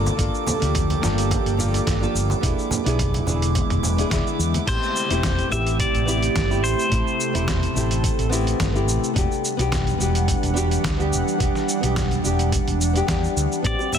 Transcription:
Already playing: analog synth pad F3 A#3 G4 A4, nylon-string guitar A#3 D4 F4 A4, synth texture D6
0.06 high conga, cabasa
0.17 fretless electric bass G1, nylon-string guitar A#3 D4 F4 A4, kick, closed hi-hat, cabasa
0.35 cabasa
0.47 high conga, low conga, cabasa
0.60 fretless electric bass D2, nylon-string guitar A#3 D4 F4 G4, closed hi-hat, cabasa
0.75 kick, closed hi-hat, mid tom, cabasa
0.90 closed hi-hat, high conga, cabasa
1.01 fretless electric bass G1, nylon-string guitar A#3 D4 F4 A4, snare, low conga, cabasa
1.18 closed hi-hat, cabasa
1.31 kick, closed hi-hat, high conga, cabasa
1.46 fretless electric bass G1, closed hi-hat, cabasa
1.57 nylon-string guitar A#3 D4 F4 A4, low conga, cabasa
1.74 closed hi-hat, high conga, cabasa
1.87 fretless electric bass G1, kick, snare, closed hi-hat, cabasa
2.00 nylon-string guitar A#3 D4 F4 A4, cabasa
2.15 fretless electric bass G1, cabasa
2.30 high conga, cabasa
2.41 fretless electric bass E1, analog synth pad D3 G#3 B3 E4, nylon-string guitar B3 D4 E4 G#4, kick, closed hi-hat, cabasa
2.59 cabasa
2.71 high conga, low conga, cabasa
2.84 fretless electric bass B1, nylon-string guitar B3 D4 E4, closed hi-hat, cabasa
2.88 nylon-string guitar G#4
2.99 kick, closed hi-hat, mid tom, cabasa
3.14 closed hi-hat, high conga, cabasa
3.26 fretless electric bass E1, nylon-string guitar B3 D4 E4 G#4, low conga, cabasa
3.42 closed hi-hat, cabasa
3.55 kick, closed hi-hat, high conga, cabasa
3.70 fretless electric bass E1, closed hi-hat, mid tom, cabasa
3.83 low conga, cabasa
3.97 nylon-string guitar B3 D4 E4 G#4, closed hi-hat, high conga, cabasa
4.10 fretless electric bass E1, nylon-string guitar B3 D4 E4 G#4, kick, snare, closed hi-hat, cabasa
4.27 cabasa
4.39 fretless electric bass E2, cabasa
4.54 closed hi-hat, high conga, cabasa
4.66 fretless electric bass A1, analog synth pad C3 A3 G4, nylon-string guitar A3 C4 E4 G4, pedal steel guitar C5, kick, closed hi-hat, crash, cabasa
4.83 cabasa
4.96 cabasa
5.09 fretless electric bass E1, nylon-string guitar A3 C4 E4 G4, closed hi-hat, cabasa
5.23 kick, snare, closed hi-hat, mid tom, cabasa
5.39 closed hi-hat, cabasa
5.49 fretless electric bass A1, nylon-string guitar B3 C4 E4 G4, pedal steel guitar E5, cabasa
5.67 closed hi-hat, cabasa
5.80 pedal steel guitar D5, kick, closed hi-hat, cabasa
5.94 fretless electric bass A1, closed hi-hat, cabasa
6.06 nylon-string guitar B3 C4 E4 G4, cabasa
6.22 closed hi-hat, cabasa
6.36 fretless electric bass G1, kick, snare, closed hi-hat, cabasa
6.48 nylon-string guitar B3 C4 E4 G4, cabasa
6.64 fretless electric bass A1, pedal steel guitar C5, cabasa
6.79 cabasa
6.90 fretless electric bass A1, nylon-string guitar A3 C4 E4 G4, analog synth pad A4, kick, closed hi-hat, cabasa
7.07 cabasa
7.20 cabasa
7.33 fretless electric bass E1, nylon-string guitar A3 C4 E4 G4, closed hi-hat, cabasa
7.48 kick, snare, closed hi-hat, mid tom, cabasa
7.63 closed hi-hat, cabasa
7.74 fretless electric bass A1, nylon-string guitar A3 C4 E4 G4, cabasa
7.91 closed hi-hat, cabasa
8.04 kick, closed hi-hat, cabasa
8.19 fretless electric bass A1, closed hi-hat, cabasa
8.29 nylon-string guitar B3 C4 E4 G4, cabasa
8.47 closed hi-hat, cabasa
8.60 fretless electric bass G1, kick, snare, closed hi-hat, cabasa
8.73 nylon-string guitar B3 C4 E4 G4, cabasa
8.88 fretless electric bass A1, cabasa
9.04 cabasa
9.14 fretless electric bass E1, analog synth pad E3 G3 D4 F#5, nylon-string guitar B3 D4 F#4, kick, closed hi-hat, cabasa
9.18 nylon-string guitar G4
9.32 cabasa
9.45 cabasa
9.57 fretless electric bass B1, nylon-string guitar B3 D4 F#4 G4, closed hi-hat, cabasa
9.72 kick, snare, closed hi-hat, mid tom, cabasa
9.87 closed hi-hat, cabasa
9.98 fretless electric bass E1, nylon-string guitar B3 D4 F#4 G4, cabasa
10.15 closed hi-hat, cabasa
10.28 kick, closed hi-hat, cabasa
10.43 fretless electric bass E1, closed hi-hat, cabasa
10.54 nylon-string guitar B3 D4 F#4 G4, cabasa
10.71 closed hi-hat, cabasa
10.84 fretless electric bass D2, kick, snare, closed hi-hat, cabasa
10.97 nylon-string guitar B3 D4 G4, cabasa
11.12 fretless electric bass E1, cabasa
11.28 cabasa
11.38 fretless electric bass E1, nylon-string guitar B3 D4 G4, kick, closed hi-hat, cabasa
11.55 snare, cabasa
11.69 cabasa
11.81 fretless electric bass B1, nylon-string guitar B3 D4 G4, closed hi-hat, cabasa
11.96 kick, snare, closed hi-hat, mid tom, cabasa
12.11 closed hi-hat, cabasa
12.23 fretless electric bass E1, nylon-string guitar B3 D4 G4, cabasa
12.39 closed hi-hat, cabasa
12.52 kick, closed hi-hat, cabasa
12.67 fretless electric bass E1, closed hi-hat, cabasa
12.81 cabasa
12.93 nylon-string guitar B3 D4 G4, closed hi-hat, cabasa
13.07 fretless electric bass E2, nylon-string guitar B3 D4 G4, kick, snare, closed hi-hat, cabasa
13.24 cabasa
13.36 fretless electric bass D2, cabasa
13.52 cabasa
13.63 fretless electric bass A1, analog synth pad C3 A3 G4 B4, nylon-string guitar B3 C4 G4, pedal steel guitar D5, kick, closed hi-hat, cabasa
13.79 high bongo, cabasa
13.92 pedal steel guitar E5, low conga, cabasa

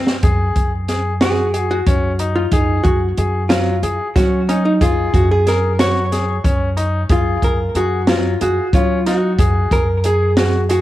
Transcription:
Already playing: grand piano C4
0.07 snare
0.23 upright bass F#2, grand piano G#4, kick, closed hi-hat
0.56 upright bass F#2, kick, closed hi-hat
0.88 grand piano G#4, snare, closed hi-hat
1.21 grand piano F#4, hollow-body jazz guitar G#4, snare, closed hi-hat
1.54 grand piano G#4, closed hi-hat
1.71 hollow-body jazz guitar F#4
1.87 upright bass F#2, grand piano C#4, kick, closed hi-hat
2.19 grand piano D#4, closed hi-hat
2.36 hollow-body jazz guitar F4
2.51 upright bass F#2, hollow-body jazz guitar D#4, grand piano G#4, kick, closed hi-hat
2.84 upright bass F#2, hollow-body jazz guitar F#4, kick, closed hi-hat
3.17 upright bass F#2, grand piano G#4, closed hi-hat
3.49 grand piano F#3, hollow-body jazz guitar F4, snare, closed hi-hat
3.83 upright bass F#2, grand piano G#4, closed hi-hat
4.16 upright bass F#3, grand piano C#4, hollow-body jazz guitar F#4, kick, snare, closed hi-hat
4.49 hollow-body jazz guitar C#4, grand piano D#4, closed hi-hat
4.65 hollow-body jazz guitar D#4
4.81 upright bass F#2, hollow-body jazz guitar F4, grand piano G#4, kick, closed hi-hat
5.13 upright bass F#2, hollow-body jazz guitar F#4, kick, closed hi-hat
5.31 hollow-body jazz guitar G#4
5.47 grand piano G#4, hollow-body jazz guitar A#4, snare, closed hi-hat
5.79 grand piano F#4, hollow-body jazz guitar C#5, snare, closed hi-hat
6.12 grand piano G#4, snare, closed hi-hat
6.44 upright bass F#2, grand piano C#4, kick, closed hi-hat
6.77 grand piano D#4, closed hi-hat
7.09 upright bass F#2, hollow-body jazz guitar F4, grand piano G#4, kick, closed hi-hat
7.42 upright bass F#2, hollow-body jazz guitar A#4, kick, closed hi-hat
7.75 upright bass F#2, hollow-body jazz guitar F#4, grand piano G#4, closed hi-hat
8.07 grand piano F#3, hollow-body jazz guitar F4, snare, closed hi-hat
8.41 upright bass F#2, hollow-body jazz guitar F#4, grand piano G#4, closed hi-hat
8.73 upright bass F#3, grand piano C#4, hollow-body jazz guitar F4, kick, closed hi-hat
9.06 grand piano D#4, hollow-body jazz guitar F#4, snare, closed hi-hat
9.38 upright bass F#2, grand piano G#4, kick, closed hi-hat
9.71 upright bass F#2, hollow-body jazz guitar A#4, kick, closed hi-hat
10.04 grand piano G#4, hollow-body jazz guitar G#4, closed hi-hat
10.37 grand piano F#4, snare, closed hi-hat
10.69 hollow-body jazz guitar F#4, grand piano G#4, closed hi-hat

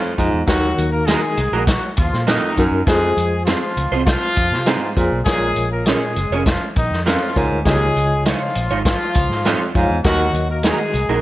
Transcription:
Already playing: baritone saxophone F2, horn section F3 F4
0.18 fingered electric bass F2, baritone saxophone G#2, reed electric piano D#4 F4 D#5, kick, closed hi-hat
0.33 fingered electric bass E2
0.46 baritone saxophone D#2, fingered electric bass D#2, reed electric piano D#3 D#4 F#4 A#4, horn section F#3 F#4, kick, snare, closed hi-hat
0.78 fingered electric bass D#2, closed hi-hat
0.91 horn section A#3 A#4
1.06 horn section G#3 G#4, clean electric guitar A#3 D#4 F#4 A#4, snare, closed hi-hat
1.37 fingered electric bass C2, closed hi-hat
1.52 fingered electric bass A#1, clean electric guitar A#3 D#4 F#4 A#4
1.66 horn section F#3 F#4, kick, snare, closed hi-hat
1.97 fingered electric bass D#2, horn section F3 F4, kick, closed hi-hat
2.13 fingered electric bass A#2, snare
2.27 baritone saxophone F2, horn section D#3 D#4, clean electric guitar A#3 D#4 F#4 A#4, snare, closed hi-hat
2.57 fingered electric bass F#2, baritone saxophone F#2, reed electric piano D#4 F#4 A#4, kick, closed hi-hat
2.71 fingered electric bass F#2
2.86 fingered electric bass F2, baritone saxophone F2, horn section G#3 G#4, reed electric piano F4 G#4 C5, kick, snare, closed hi-hat
3.17 fingered electric bass F2, closed hi-hat
3.45 horn section F3 F4, clean electric guitar C4 F4 G#4, snare, closed hi-hat
3.49 clean electric guitar C5
3.77 fingered electric bass C#2, closed hi-hat
3.92 fingered electric bass C2, clean electric guitar C4 F4 G#4 C5
4.04 horn section F3 F4, kick, snare, closed hi-hat
4.36 fingered electric bass F2, kick, closed hi-hat
4.51 fingered electric bass C3, snare
4.66 baritone saxophone G#2, clean electric guitar C4 F4 G#4 C5, snare, closed hi-hat
4.96 fingered electric bass F2, baritone saxophone A#2, reed electric piano F4 G#4 C5, kick, closed hi-hat
5.12 fingered electric bass B1
5.25 fingered electric bass A#1, baritone saxophone A#2, reed electric piano A#2 F4 A#4 C#5, horn section G#3 G#4, kick, snare, closed hi-hat
5.56 fingered electric bass A#1, closed hi-hat
5.71 horn section A#3 A#4
5.86 horn section G#3 G#4, clean electric guitar C#4 F4 A#4 C#5, snare, closed hi-hat
6.16 fingered electric bass F#1, closed hi-hat
6.30 fingered electric bass F1, clean electric guitar C#4 F4 A#4 C#5
6.46 horn section F3 F4, kick, snare, closed hi-hat
6.76 fingered electric bass A#1, horn section D#3 D#4, kick, closed hi-hat
6.91 fingered electric bass F2, snare
7.05 baritone saxophone F2, horn section F3 F4, clean electric guitar C#4 F4 A#4 C#5, snare, closed hi-hat
7.36 fingered electric bass C#2, baritone saxophone G#2, reed electric piano F4 A#4 C#5, kick, closed hi-hat
7.51 fingered electric bass D2
7.65 fingered electric bass C#2, baritone saxophone D#2, reed electric piano C#3 F4 C#5 D#5, horn section G#3 G#4, kick, snare, closed hi-hat
7.96 fingered electric bass C#2, closed hi-hat
8.25 horn section F3 F4, clean electric guitar G#3 D#4 F4 C#5, snare, closed hi-hat
8.55 fingered electric bass A#1, closed hi-hat
8.70 fingered electric bass G#1, clean electric guitar G#3 D#4 F4 C#5
8.85 horn section F3 F4, kick, snare, closed hi-hat
9.15 fingered electric bass C#2, kick, closed hi-hat
9.30 fingered electric bass G#2, snare
9.45 baritone saxophone F2, clean electric guitar G#3 D#4 F4 C#5, snare, closed hi-hat
9.75 fingered electric bass F2, baritone saxophone G#2, reed electric piano F4 C#5 F5, kick, closed hi-hat
9.90 fingered electric bass E2
10.04 fingered electric bass D#2, baritone saxophone D#2, reed electric piano D#3 F#4 A#4 D#5, horn section F#3 F#4, kick, snare, closed hi-hat
10.33 fingered electric bass D#2, closed hi-hat
10.51 horn section A#3 A#4
10.63 horn section G#3 G#4, clean electric guitar A#3 D#4 F#4 A#4, snare, closed hi-hat
10.93 fingered electric bass C2, closed hi-hat
11.09 fingered electric bass A#1, clean electric guitar A#3 D#4 F#4 A#4

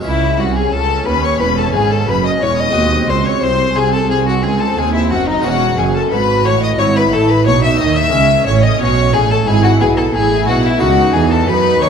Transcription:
0.00 harpsichord G#3 C#4 G#4
0.04 harpsichord C#2, double bass section C#2, cello section C#2, viola section C#4, violin section E4 E5, violin E4
0.38 harpsichord C2, double bass section C2, cello section C2, violin section F#4 F#5, violin F#4
0.56 violin section G#4 G#5, violin G#4
0.72 double bass section C#2, harpsichord C#2, cello section C#2, violin A4, violin section A4 A5
1.06 harpsichord D#2, cello section D#2, double bass section D#2, violin B4, violin section B4 B5
1.23 violin section C#5 C#6, violin C#5
1.40 double bass section E1, harpsichord E2, cello section E2, violin B4, violin section B4 B5
1.57 violin A4, violin section A4 A5
1.73 double bass section G#1, harpsichord G#2, cello section G#2, violin section G#4 G#5, violin G#4
1.90 violin section A4 A5, violin A4
2.06 double bass section F#1, harpsichord F#2, cello section F#2, violin section B4 B5, violin B4
2.23 violin section D#5 D#6, violin D#5
2.40 double bass section E1, harpsichord E2, cello section E2, violin section C#5 C#6, violin C#5
2.57 violin section D#5 D#6, violin D#5
2.70 double bass section D#2, harpsichord G#3 C4 F#4
2.75 harpsichord D#2, cello section D#2, viola section C4
3.08 double bass section C#2, harpsichord C#2, cello section C#2, violin section C5 C6, violin C5
3.26 violin section C#5 C#6, violin C#5
3.41 double bass section C2, harpsichord C2, cello section C2, violin section C5 C6, violin C5
3.75 double bass section C2, harpsichord C2, cello section C2, violin section G#4 G#5, violin G#4
3.92 violin section A4 A5, violin A4
4.09 double bass section C2, harpsichord C2, cello section C2, viola section C4, violin section G#4 G#5, violin G#4
4.26 violin section F#4 F#5, violin F#4
4.42 double bass section C#2, harpsichord C#2, cello section C#2, violin G#4, violin section G#4 G#5
4.60 violin A4, violin section A4 A5
4.76 double bass section D#2, harpsichord D#2, cello section D#2, violin section G#4 G#5, violin G#4
4.94 violin section E4 E5, violin E4
5.10 double bass section F#1, harpsichord F#2, cello section F#2, violin section F#4 F#5, violin F#4
5.27 violin D#4, violin section D#4 D#5
5.40 double bass section E1, harpsichord G#3 C#4 G#4, viola section C#4, violin section F#4
5.44 harpsichord E2, cello section E2, violin F#4, violin section F#5
5.77 double bass section F#1, harpsichord F#2, cello section F#2, violin G#4, violin section G#4 G#5
5.94 violin A4, violin section A4 A5
6.11 double bass section G#1, harpsichord G#2, cello section G#2, viola section F#4, violin B4, violin section B4 B5
6.45 double bass section A1, harpsichord A2, cello section A2, violin C#5, violin section C#5 C#6
6.63 violin D#5, violin section D#5 D#6
6.79 double bass section G#1, harpsichord G#2, cello section G#2, viola section E4, violin C#5, violin section C#5 C#6
6.97 violin B4, violin section B4 B5
7.11 double bass section A1, harpsichord A2, cello section A2, violin A4, violin section A4 A5
7.30 violin B4, violin section B4 B5
7.46 double bass section B1, harpsichord B2, cello section B2, viola section D#4, violin C#5, violin section C#5 C#6
7.63 violin section E5 E6, violin E5
7.79 double bass section D#2, harpsichord D#3, cello section D#3, violin section D#5 D#6, violin D#5
7.96 violin E5, violin section E5 E6
8.09 harpsichord G#3 C#4 G#4, viola section C#4
8.13 double bass section C#2, cello section C#3, harpsichord C#3
8.46 double bass section A1, cello section A2, harpsichord A2, violin section C#5 C#6, violin C#5
8.63 violin section D#5 D#6, violin D#5
8.79 double bass section B1, cello section B2, harpsichord B2, violin section C#5 C#6, violin C#5
9.13 double bass section A1, cello section A2, harpsichord A2, violin G#4, violin section G#4 G#5
9.31 violin section A4 A5, violin A4
9.47 double bass section G#1, cello section G#2, harpsichord G#2, viola section E4, violin section G#4 G#5, violin G#4
9.63 violin section F#4 F#5, violin F#4
9.80 double bass section B1, cello section B2, harpsichord B2, violin section G#4 G#5, violin G#4
9.97 violin A4, violin section A4 A5
10.13 double bass section A1, cello section A2, harpsichord A2, viola section E4, violin G#4, violin section G#4 G#5
10.47 double bass section B1, cello section B2, harpsichord B2, violin F#4, violin section F#4 F#5
10.64 violin E4, violin section E4 E5
10.77 double bass section C#2, cello section C#3, harpsichord A3 D#4 F#4, viola section D#4, violin F#4, violin section F#4
10.81 harpsichord C#3, violin section F#5
11.14 double bass section E2, cello section E3, harpsichord E3, violin G#4, violin section G#4 G#5
11.30 violin section A4 A5, violin A4
11.47 double bass section F#2, cello section F#3, harpsichord F#3, viola section D#4, violin section B4 B5, violin B4
11.81 double bass section D#2, cello section D#3, harpsichord D#3, violin section C#5 C#6, violin C#5

